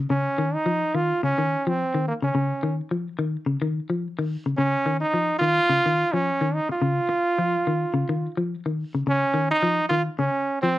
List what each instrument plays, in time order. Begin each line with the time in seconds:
0.10 clean electric guitar C#3, trombone C#4
0.38 clean electric guitar D#3
0.54 trombone D#4
0.66 clean electric guitar F3
0.95 clean electric guitar D#3, trombone F4
1.23 clean electric guitar C#3, trombone C#4
1.38 clean electric guitar D#3
1.67 clean electric guitar F3, trombone C4
1.95 clean electric guitar D#3
2.08 trombone A#3
2.22 clean electric guitar C#3, trombone C#4
2.35 clean electric guitar C#3
2.63 clean electric guitar D#3
2.91 clean electric guitar F3
3.19 clean electric guitar D#3
3.46 clean electric guitar C#3
3.62 clean electric guitar D#3
3.90 clean electric guitar F3
4.19 clean electric guitar D#3
4.46 clean electric guitar C#3
4.57 clean electric guitar C#3, trombone C#4
4.86 clean electric guitar D#3
5.01 trombone D#4
5.14 clean electric guitar F3
5.39 clean electric guitar D#3, trombone F4
5.69 clean electric guitar C#3
5.86 clean electric guitar D#3
6.13 clean electric guitar F3, trombone C#4
6.41 clean electric guitar D#3
6.55 trombone D#4
6.69 trombone F4, muted clean electric guitar stroke
6.82 clean electric guitar C#3
7.09 muted clean electric guitar stroke
7.38 clean electric guitar F3
7.67 clean electric guitar D#3
7.94 clean electric guitar C#3
8.09 clean electric guitar D#3
8.37 clean electric guitar F3
8.66 clean electric guitar D#3
8.95 clean electric guitar C#3
9.07 clean electric guitar C#3, trombone C#4
9.34 clean electric guitar D#3
9.51 trombone D#4
9.63 clean electric guitar F3
9.89 clean electric guitar D#3, trombone F4
10.19 clean electric guitar C#3, trombone C#4
10.62 clean electric guitar F3, trombone C4